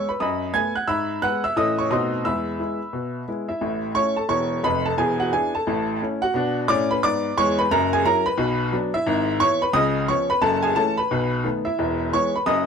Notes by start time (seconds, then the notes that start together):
0.09 B4 B5
0.20 F#2 D#5 B5 D#6
0.53 A3 B3 B4 G#5 G#6
0.75 F#5 F#6
0.88 G#2 E5 B5 E6
1.22 G#3 B3 B4 F#5 F#6
1.44 E5 E6
1.56 A2 E3 C#4 A4 D#5 D#6
1.78 C#5 C#6
1.90 B2 A3 C4 D#4 F#4 D#5 C6 D#6
2.25 E2 G#3 E5 B5 E6
2.59 G#3 B3 E4
2.93 B2
3.28 G#3 B3 E4
3.49 E4 E5
3.61 A1 A2
3.95 A3 C#4 E4 C#5 C#6
4.17 A4 A5
4.29 E1 E2 C#5 C#6
4.63 F1 F2 B4 B5
4.86 A4 A5
4.98 E1 E2 G#4 G#5
5.20 F#4 F#5
5.32 B3 D4 E4 G#4 G#5
5.55 A4 A5
5.67 A1 A2
6.01 A3 C#4 E4
6.22 F#4 F#5
6.34 B2 D4
6.68 A2 C#4 D5 D6
6.91 B4 B5
7.03 G#2 B3 D5 D6
7.37 E2 G#3 C#5 C#6
7.59 B4 B5
7.71 F#1 F#2 A#4 A#5
7.93 G#4 G#5
8.05 F#3 C#4 E4 A#4 A#5
8.26 B4 B5
8.37 B1 B2
8.72 F#3 B3 D4
8.94 E4 E5
9.06 G#1 G#2
9.40 E3 B3 E4 C#5 C#6
9.62 B4 B5
9.73 C#2 C#3 D#5 D#6
10.08 F3 B3 C#4 C#5 C#6
10.30 B4 B5
10.41 F#1 F#2 A4 A5
10.63 G#4 G#5
10.76 E3 A3 C#4 A4 A5
10.97 B4 B5
11.11 B1 B2
11.44 D#3 A3 B3
11.65 E4 E5
11.79 E1 E2
12.13 E3 G#3 B3 C#5 C#6
12.36 B4 B5
12.46 F#1 F#2 D#5 D#6